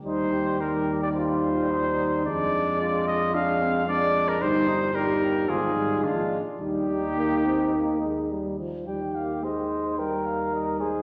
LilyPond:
<<
  \new Staff \with { instrumentName = "Trumpet" } { \time 4/4 \key ees \major \tempo 4 = 109 c''4 bes'8. d''16 c''2 | d''4. ees''8 f''4 d''8. bes'16 | c''4 bes'4 aes'4 f'8. r16 | g'2. r4 |
g''8 f''8 ees''4 g''8 f''8 ees''8 c''8 | }
  \new Staff \with { instrumentName = "Flugelhorn" } { \time 4/4 \key ees \major ees'8 g'4. f'4 ees'4 | d'4 f'4 d'8 c'8 d'4 | ees'8 ees'8 g'4 f'4 d'8 r8 | ees'2.~ ees'8 r8 |
g'4 c''4 bes'4. aes'8 | }
  \new Staff \with { instrumentName = "French horn" } { \time 4/4 \key ees \major ees'4 ees'2. | d'2 d'4 d'4 | ees'4 ees'4 ees'4 d'8 r8 | ees'2.~ ees'8 r8 |
ees'2 ees'2 | }
  \new Staff \with { instrumentName = "Trombone" } { \clef bass \time 4/4 \key ees \major g4 g2. | aes2 aes4 aes4 | g4 g4 f8 g8 aes8 r8 | g4 bes8 c'8 bes8 aes8 g8 f8 |
g8 bes8 aes4 g4 g8 aes8 | }
  \new Staff \with { instrumentName = "Tuba" } { \clef bass \time 4/4 \key ees \major ees,1 | f,1 | g,,2 aes,,4 bes,,8 r8 | ees,2.~ ees,8 r8 |
ees,1 | }
>>